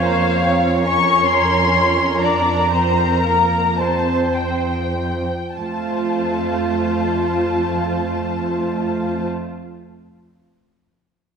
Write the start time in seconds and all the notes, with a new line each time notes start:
Already playing: F2 C#5 F5
0.02 A#3 C5
0.42 C4 C#5
0.83 C#4 A#4 C#6
1.26 C6
2.20 D4 A#4 D5 A#5
2.70 C4 C5
3.23 A#3 A#4
3.78 C4 C5 A5
4.36 G5
5.55 F2 A3 F4 C5 A5